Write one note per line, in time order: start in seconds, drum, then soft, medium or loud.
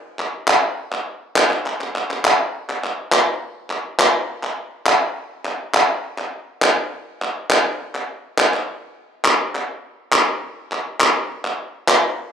0.19 clap soft
0.48 clap medium
0.92 clap soft
1.36 clap medium
1.51 clap soft
1.66 clap soft
1.81 clap soft
1.96 clap soft
2.11 clap soft
2.25 clap medium
2.70 clap soft
2.84 clap soft
3.12 clap soft
3.70 clap soft
4.00 clap medium
4.43 clap soft
4.86 clap medium
5.45 clap soft
5.74 clap medium
6.18 clap soft
6.62 clap soft
7.22 clap soft
7.50 clap medium
7.95 clap soft
8.38 clap soft
8.54 clap soft
9.25 clap medium
9.55 clap soft
10.12 clap medium
10.72 clap soft
11.00 clap medium
11.45 clap soft
11.88 clap medium